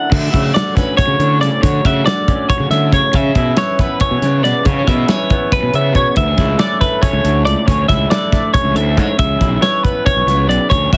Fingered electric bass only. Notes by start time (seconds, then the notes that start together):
0.12 D3
0.34 C#3
1.07 C#3
1.19 D3
1.40 C#3
1.63 D3
1.85 C#3
2.60 C#3
2.70 D3
2.93 C#3
3.14 C#3
3.35 B2
4.11 B2
4.22 C#3
4.44 B2
4.65 C#3
4.88 B2
5.63 B2
5.73 C#3
5.95 B2
6.17 D2
6.37 C#2
7.13 C#2
7.24 D2
7.45 C#2
7.67 D2
7.89 C#2
8.64 C#2
8.74 D2
8.98 G#2
9.19 C#2
9.40 B1
10.16 B1
10.26 C#2
10.48 B1
10.71 D2
10.92 C#2